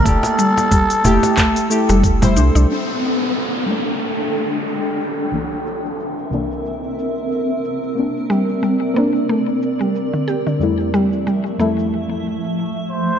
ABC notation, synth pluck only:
X:1
M:4/4
L:1/16
Q:"Swing 16ths" 1/4=91
K:Gdor
V:1 name="Synth pluck" clef=bass
z2 G,2 G, z A,2 A, z2 G, z G, D D | z16 | z16 | z2 G,2 G, z B,2 A, z2 G, z D, G D, |
z2 G,2 G, z A,2 z8 |]